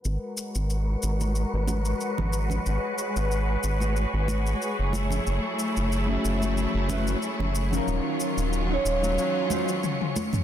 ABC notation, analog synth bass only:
X:1
M:4/4
L:1/16
Q:"Swing 16ths" 1/4=92
K:G#m
V:1 name="Analog synth bass" clef=bass
G,,, z2 G,,,3 G,,,3 G,,,3 z G,,,3 | G,,, z2 G,,,3 G,,,3 G,,,3 z F,,,3 | F,,, z2 F,,,3 F,,,3 F,,,3 z F,,,3 | D,,, z2 D,,,3 D,,,2 z8 |]